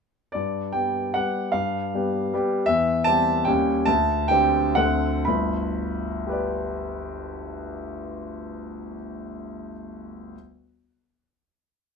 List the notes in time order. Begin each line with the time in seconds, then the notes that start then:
0.32 G2 D5
0.72 G3 B3 G4 G5
1.14 G3 B3 G4 F#5
1.52 G2 F5
1.94 G3 B3 G4
2.33 G3 B3 G4
2.66 E2 E5
3.04 G3 C4 G4 A5
3.45 D#2 G3 C#4 G4 G5
3.85 D2 A5
4.28 D3 C4 G4 G5
4.75 D2 D3 C4 A4 F#5
5.25 G1 D2 B5
6.27 G4 B4
6.31 D5